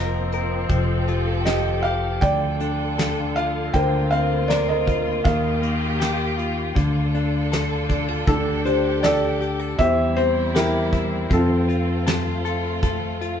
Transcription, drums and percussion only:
0, 0, Header, 1, 2, 480
1, 0, Start_track
1, 0, Tempo, 758534
1, 1403, Time_signature, 4, 2, 24, 8
1, 8480, End_track
2, 0, Start_track
2, 0, Title_t, "Drums"
2, 203, Note_on_c, 9, 42, 47
2, 266, Note_off_c, 9, 42, 0
2, 439, Note_on_c, 9, 42, 64
2, 440, Note_on_c, 9, 36, 63
2, 503, Note_off_c, 9, 36, 0
2, 503, Note_off_c, 9, 42, 0
2, 682, Note_on_c, 9, 42, 44
2, 745, Note_off_c, 9, 42, 0
2, 921, Note_on_c, 9, 42, 61
2, 926, Note_on_c, 9, 38, 85
2, 985, Note_off_c, 9, 42, 0
2, 990, Note_off_c, 9, 38, 0
2, 1166, Note_on_c, 9, 42, 45
2, 1229, Note_off_c, 9, 42, 0
2, 1406, Note_on_c, 9, 36, 74
2, 1406, Note_on_c, 9, 42, 54
2, 1469, Note_off_c, 9, 36, 0
2, 1469, Note_off_c, 9, 42, 0
2, 1646, Note_on_c, 9, 42, 48
2, 1709, Note_off_c, 9, 42, 0
2, 1888, Note_on_c, 9, 42, 66
2, 1893, Note_on_c, 9, 38, 82
2, 1951, Note_off_c, 9, 42, 0
2, 1956, Note_off_c, 9, 38, 0
2, 2128, Note_on_c, 9, 42, 50
2, 2191, Note_off_c, 9, 42, 0
2, 2367, Note_on_c, 9, 36, 65
2, 2368, Note_on_c, 9, 42, 71
2, 2431, Note_off_c, 9, 36, 0
2, 2431, Note_off_c, 9, 42, 0
2, 2607, Note_on_c, 9, 42, 51
2, 2670, Note_off_c, 9, 42, 0
2, 2846, Note_on_c, 9, 42, 68
2, 2851, Note_on_c, 9, 38, 89
2, 2909, Note_off_c, 9, 42, 0
2, 2914, Note_off_c, 9, 38, 0
2, 3085, Note_on_c, 9, 36, 61
2, 3086, Note_on_c, 9, 42, 51
2, 3148, Note_off_c, 9, 36, 0
2, 3149, Note_off_c, 9, 42, 0
2, 3324, Note_on_c, 9, 36, 79
2, 3326, Note_on_c, 9, 42, 59
2, 3387, Note_off_c, 9, 36, 0
2, 3389, Note_off_c, 9, 42, 0
2, 3562, Note_on_c, 9, 42, 49
2, 3625, Note_off_c, 9, 42, 0
2, 3803, Note_on_c, 9, 42, 65
2, 3808, Note_on_c, 9, 38, 90
2, 3866, Note_off_c, 9, 42, 0
2, 3871, Note_off_c, 9, 38, 0
2, 4043, Note_on_c, 9, 42, 49
2, 4106, Note_off_c, 9, 42, 0
2, 4280, Note_on_c, 9, 36, 70
2, 4283, Note_on_c, 9, 42, 64
2, 4343, Note_off_c, 9, 36, 0
2, 4346, Note_off_c, 9, 42, 0
2, 4522, Note_on_c, 9, 42, 46
2, 4585, Note_off_c, 9, 42, 0
2, 4762, Note_on_c, 9, 42, 64
2, 4767, Note_on_c, 9, 38, 86
2, 4825, Note_off_c, 9, 42, 0
2, 4830, Note_off_c, 9, 38, 0
2, 4997, Note_on_c, 9, 36, 62
2, 5000, Note_on_c, 9, 42, 46
2, 5060, Note_off_c, 9, 36, 0
2, 5064, Note_off_c, 9, 42, 0
2, 5236, Note_on_c, 9, 36, 78
2, 5239, Note_on_c, 9, 42, 57
2, 5299, Note_off_c, 9, 36, 0
2, 5303, Note_off_c, 9, 42, 0
2, 5481, Note_on_c, 9, 42, 46
2, 5544, Note_off_c, 9, 42, 0
2, 5715, Note_on_c, 9, 42, 67
2, 5720, Note_on_c, 9, 38, 87
2, 5778, Note_off_c, 9, 42, 0
2, 5783, Note_off_c, 9, 38, 0
2, 5957, Note_on_c, 9, 42, 52
2, 6020, Note_off_c, 9, 42, 0
2, 6195, Note_on_c, 9, 36, 68
2, 6199, Note_on_c, 9, 42, 71
2, 6258, Note_off_c, 9, 36, 0
2, 6262, Note_off_c, 9, 42, 0
2, 6438, Note_on_c, 9, 42, 51
2, 6502, Note_off_c, 9, 42, 0
2, 6678, Note_on_c, 9, 42, 68
2, 6683, Note_on_c, 9, 38, 86
2, 6741, Note_off_c, 9, 42, 0
2, 6746, Note_off_c, 9, 38, 0
2, 6915, Note_on_c, 9, 36, 59
2, 6915, Note_on_c, 9, 42, 50
2, 6978, Note_off_c, 9, 36, 0
2, 6979, Note_off_c, 9, 42, 0
2, 7156, Note_on_c, 9, 36, 73
2, 7157, Note_on_c, 9, 42, 62
2, 7219, Note_off_c, 9, 36, 0
2, 7220, Note_off_c, 9, 42, 0
2, 7400, Note_on_c, 9, 42, 50
2, 7463, Note_off_c, 9, 42, 0
2, 7636, Note_on_c, 9, 42, 69
2, 7642, Note_on_c, 9, 38, 86
2, 7700, Note_off_c, 9, 42, 0
2, 7705, Note_off_c, 9, 38, 0
2, 7879, Note_on_c, 9, 42, 51
2, 7943, Note_off_c, 9, 42, 0
2, 8118, Note_on_c, 9, 36, 70
2, 8119, Note_on_c, 9, 42, 62
2, 8181, Note_off_c, 9, 36, 0
2, 8183, Note_off_c, 9, 42, 0
2, 8361, Note_on_c, 9, 42, 48
2, 8424, Note_off_c, 9, 42, 0
2, 8480, End_track
0, 0, End_of_file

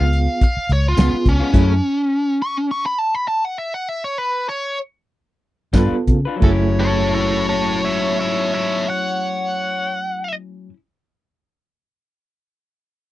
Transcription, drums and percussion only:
0, 0, Header, 1, 2, 480
1, 0, Start_track
1, 0, Key_signature, 3, "minor"
1, 0, Tempo, 566038
1, 1303, Time_signature, 4, 2, 24, 8
1, 2755, Tempo, 610376
1, 4195, Tempo, 669643
1, 5155, Tempo, 700117
1, 9746, End_track
2, 0, Start_track
2, 0, Title_t, "Drums"
2, 110, Note_on_c, 9, 42, 63
2, 195, Note_off_c, 9, 42, 0
2, 350, Note_on_c, 9, 42, 84
2, 351, Note_on_c, 9, 36, 78
2, 435, Note_off_c, 9, 36, 0
2, 435, Note_off_c, 9, 42, 0
2, 591, Note_on_c, 9, 42, 62
2, 675, Note_off_c, 9, 42, 0
2, 826, Note_on_c, 9, 42, 85
2, 826, Note_on_c, 9, 54, 112
2, 837, Note_on_c, 9, 38, 118
2, 910, Note_off_c, 9, 42, 0
2, 910, Note_off_c, 9, 54, 0
2, 922, Note_off_c, 9, 38, 0
2, 1065, Note_on_c, 9, 36, 78
2, 1067, Note_on_c, 9, 42, 59
2, 1150, Note_off_c, 9, 36, 0
2, 1152, Note_off_c, 9, 42, 0
2, 1304, Note_on_c, 9, 36, 122
2, 1305, Note_on_c, 9, 42, 83
2, 1305, Note_on_c, 9, 49, 74
2, 1389, Note_off_c, 9, 36, 0
2, 1390, Note_off_c, 9, 42, 0
2, 1390, Note_off_c, 9, 49, 0
2, 4665, Note_on_c, 9, 42, 80
2, 4665, Note_on_c, 9, 54, 110
2, 4666, Note_on_c, 9, 36, 83
2, 4675, Note_on_c, 9, 38, 119
2, 4736, Note_off_c, 9, 42, 0
2, 4736, Note_off_c, 9, 54, 0
2, 4738, Note_off_c, 9, 36, 0
2, 4746, Note_off_c, 9, 38, 0
2, 4908, Note_on_c, 9, 36, 80
2, 4908, Note_on_c, 9, 42, 57
2, 4980, Note_off_c, 9, 36, 0
2, 4980, Note_off_c, 9, 42, 0
2, 5155, Note_on_c, 9, 49, 82
2, 5156, Note_on_c, 9, 36, 101
2, 5223, Note_off_c, 9, 49, 0
2, 5225, Note_off_c, 9, 36, 0
2, 9746, End_track
0, 0, End_of_file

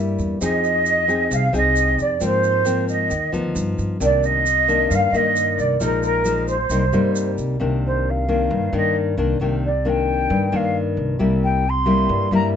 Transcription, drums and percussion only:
0, 0, Header, 1, 2, 480
1, 0, Start_track
1, 0, Key_signature, -3, "minor"
1, 0, Tempo, 449775
1, 431, Time_signature, 4, 2, 24, 8
1, 13406, End_track
2, 0, Start_track
2, 0, Title_t, "Drums"
2, 201, Note_on_c, 9, 82, 24
2, 308, Note_off_c, 9, 82, 0
2, 442, Note_on_c, 9, 82, 67
2, 549, Note_off_c, 9, 82, 0
2, 684, Note_on_c, 9, 82, 25
2, 791, Note_off_c, 9, 82, 0
2, 917, Note_on_c, 9, 82, 59
2, 1024, Note_off_c, 9, 82, 0
2, 1166, Note_on_c, 9, 82, 28
2, 1273, Note_off_c, 9, 82, 0
2, 1404, Note_on_c, 9, 82, 60
2, 1511, Note_off_c, 9, 82, 0
2, 1647, Note_on_c, 9, 82, 25
2, 1754, Note_off_c, 9, 82, 0
2, 1879, Note_on_c, 9, 82, 62
2, 1986, Note_off_c, 9, 82, 0
2, 2124, Note_on_c, 9, 82, 26
2, 2231, Note_off_c, 9, 82, 0
2, 2356, Note_on_c, 9, 82, 65
2, 2463, Note_off_c, 9, 82, 0
2, 2599, Note_on_c, 9, 82, 26
2, 2705, Note_off_c, 9, 82, 0
2, 2836, Note_on_c, 9, 82, 63
2, 2942, Note_off_c, 9, 82, 0
2, 3080, Note_on_c, 9, 82, 27
2, 3187, Note_off_c, 9, 82, 0
2, 3316, Note_on_c, 9, 82, 62
2, 3423, Note_off_c, 9, 82, 0
2, 3563, Note_on_c, 9, 82, 24
2, 3670, Note_off_c, 9, 82, 0
2, 3797, Note_on_c, 9, 82, 62
2, 3904, Note_off_c, 9, 82, 0
2, 4040, Note_on_c, 9, 82, 25
2, 4147, Note_off_c, 9, 82, 0
2, 4281, Note_on_c, 9, 82, 67
2, 4388, Note_off_c, 9, 82, 0
2, 4517, Note_on_c, 9, 82, 27
2, 4624, Note_off_c, 9, 82, 0
2, 4761, Note_on_c, 9, 82, 61
2, 4867, Note_off_c, 9, 82, 0
2, 5005, Note_on_c, 9, 82, 27
2, 5112, Note_off_c, 9, 82, 0
2, 5243, Note_on_c, 9, 82, 64
2, 5349, Note_off_c, 9, 82, 0
2, 5491, Note_on_c, 9, 82, 24
2, 5597, Note_off_c, 9, 82, 0
2, 5723, Note_on_c, 9, 82, 64
2, 5829, Note_off_c, 9, 82, 0
2, 5966, Note_on_c, 9, 82, 26
2, 6073, Note_off_c, 9, 82, 0
2, 6197, Note_on_c, 9, 82, 65
2, 6304, Note_off_c, 9, 82, 0
2, 6434, Note_on_c, 9, 82, 26
2, 6541, Note_off_c, 9, 82, 0
2, 6671, Note_on_c, 9, 82, 57
2, 6778, Note_off_c, 9, 82, 0
2, 6913, Note_on_c, 9, 82, 26
2, 7020, Note_off_c, 9, 82, 0
2, 7150, Note_on_c, 9, 82, 62
2, 7257, Note_off_c, 9, 82, 0
2, 7393, Note_on_c, 9, 82, 25
2, 7500, Note_off_c, 9, 82, 0
2, 7637, Note_on_c, 9, 82, 63
2, 7744, Note_off_c, 9, 82, 0
2, 7876, Note_on_c, 9, 82, 25
2, 7983, Note_off_c, 9, 82, 0
2, 13406, End_track
0, 0, End_of_file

